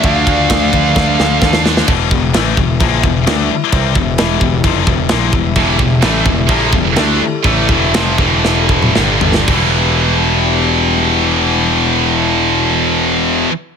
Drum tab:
CC |----------------|x---x---x---x---|x---x---x---x---|x---x---x---x---|
RD |x-x-x-x---------|----------------|----------------|----------------|
SD |----o---o-o-oooo|----o-------o---|----o-------o---|----o-------o---|
T2 |----------------|----------------|----------------|----------------|
FT |----------------|----------------|----------------|----------------|
BD |o-o-o-o-o---o---|o-o---o-o-o-----|o-o---o-o-o---o-|o-o---o-o-o-----|

CC |x---x-----------|x---------------|----------------|
RD |----------------|----------------|----------------|
SD |----o---o---o--o|----------------|----------------|
T2 |-----------o----|----------------|----------------|
FT |--------------o-|----------------|----------------|
BD |o-o---o---o-----|o---------------|----------------|